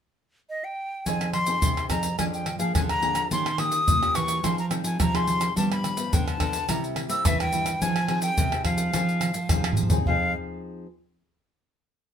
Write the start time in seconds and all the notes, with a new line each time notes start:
0.50 D#5
0.64 G5
1.06 F2 F3 C4 D#4 G#4 G#5, pandeiro, shaker, surdo
1.21 pandeiro, tamborim, shaker
1.33 C6, pandeiro, tamborim
1.46 C4 D#4 G#4, pandeiro, shaker
1.62 C3, pandeiro, shaker, surdo
1.77 pandeiro, tamborim, shaker
1.90 F2 C4 D#4 G#4 A#5, pandeiro, tamborim, shaker, surdo
2.03 pandeiro, shaker
2.18 F2 F3 A#3 D4 G#4 G#5, pandeiro, tamborim, shaker, surdo
2.34 G5, pandeiro, shaker
2.46 pandeiro, tamborim
2.59 F3 A#3 D4 G#4 F5, pandeiro, shaker
2.75 D3 F3 G#5, pandeiro, tamborim, shaker, surdo
2.89 A#5, pandeiro, tamborim, shaker
3.02 A#3 D4 G#4, pandeiro
3.15 pandeiro, tamborim, shaker
3.31 D#3 A#3 C#4 G4 C6, pandeiro, shaker, surdo
3.46 pandeiro, tamborim, shaker
3.58 A#3 C#4 G4 D#6, pandeiro, tamborim
3.72 pandeiro, shaker
3.87 A#2, pandeiro, shaker, surdo
4.02 A#3 C#4 G4, pandeiro, tamborim, shaker
4.15 E3 C#6, pandeiro, tamborim, shaker
4.28 pandeiro, shaker
4.43 F3 C4 D#4 G#4 C6, pandeiro, tamborim, shaker, surdo
4.58 A#5, pandeiro, shaker
4.70 C4 D#4 G#4, pandeiro, tamborim, shaker
4.84 F3 G#5, pandeiro, shaker
4.99 C3 F3 A#5, pandeiro, tamborim, shaker, surdo
5.14 C4 D#4 G#4 C6, pandeiro, tamborim, shaker
5.28 pandeiro, shaker
5.41 pandeiro, tamborim, shaker
5.56 G2 F3 G3 B3 D4 A5, pandeiro, shaker, surdo
5.72 B5, pandeiro, tamborim, shaker
5.84 pandeiro, tamborim, shaker
5.96 F3 B3 D4, pandeiro, shaker
6.13 D3 G5, pandeiro, shaker, surdo
6.28 A5, pandeiro, tamborim, shaker
6.40 D3 F3 B3 D4, pandeiro, tamborim, surdo
6.53 pandeiro, shaker
6.68 C3 G3 A#3 E4 A#5, pandeiro, tamborim, shaker, surdo
6.84 pandeiro, shaker
6.96 pandeiro, tamborim
7.09 G3 A#3 C4 E4 E6, pandeiro, shaker
7.25 G2 E3 E5, pandeiro, tamborim, shaker, surdo
7.40 G5, pandeiro, tamborim, shaker
7.52 G3 A#3 E4, pandeiro, shaker
7.66 pandeiro, tamborim, shaker
7.81 F3 C4 D#4 G#4 G#5, pandeiro, shaker, surdo
7.96 pandeiro, tamborim, shaker
8.08 C4 D#4 G#4, pandeiro, tamborim
8.22 G5, pandeiro, shaker
8.37 C3, pandeiro, shaker, surdo
8.52 C4 D#4 G#4, pandeiro, tamborim, shaker
8.65 F3 F5, pandeiro, tamborim, surdo
8.78 pandeiro, shaker
8.94 F3 C4 D#4 G#4, pandeiro, tamborim, shaker, surdo
9.09 pandeiro, shaker
9.21 pandeiro, tamborim, shaker
9.34 F3, pandeiro, shaker
9.49 C3 F3 C4 D#4 G#4, pandeiro, tamborim, shaker, surdo
9.64 pandeiro, tamborim, shaker
9.73 surdo
9.77 pandeiro, shaker
9.83 surdo
9.90 C4 D#4 G#4, pandeiro, shaker, surdo
10.06 F2 F3 C4 D#4 G#4 F5, surdo